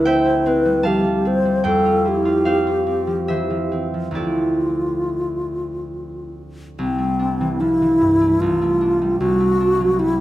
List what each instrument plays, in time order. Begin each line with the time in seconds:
Already playing: harp D2 E4 C5
0.05 harp C4 E5 G5, alto flute C5
0.25 harp E4
0.46 harp C4, alto flute B4
0.65 harp G3
0.83 harp F3 F5 A5, alto flute G4
1.04 harp G3
1.25 harp C4, alto flute C5
1.45 harp G3
1.64 harp F2 C5 G5, alto flute A4
1.85 harp F4
2.05 harp E4, alto flute G4
2.25 harp F4
2.45 harp C4 C5 F5
2.67 harp F4
2.87 harp C4
3.07 harp F3
3.28 harp E3 C5 E5
3.50 harp F3
3.72 harp C4
3.94 harp F3
4.11 harp D2 F3 C4 E4 G4
4.15 alto flute F4, harp A4 D5
6.79 harp C2, alto flute C4
6.98 harp A3
7.19 harp D4
7.41 harp E3
7.60 harp F3, alto flute E4
7.82 harp E3
8.01 harp G2
8.21 harp A3
8.40 harp C2, alto flute F4
8.62 harp A3
8.81 harp D4
9.02 harp G3
9.19 harp C2, alto flute F#4
9.40 harp A3
9.60 harp D4
9.80 harp F#3
9.99 harp G3, alto flute E4